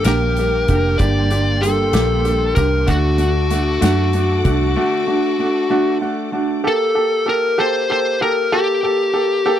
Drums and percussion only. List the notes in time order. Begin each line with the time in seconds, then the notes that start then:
0.04 snare, closed hi-hat
0.36 closed hi-hat
0.68 kick, closed hi-hat
0.99 kick, closed hi-hat
1.30 closed hi-hat
1.63 closed hi-hat
1.93 snare, closed hi-hat
2.25 closed hi-hat
2.56 kick, closed hi-hat
2.88 kick, closed hi-hat
3.18 closed hi-hat
3.50 closed hi-hat
3.82 snare, closed hi-hat
4.13 closed hi-hat
4.45 kick, closed hi-hat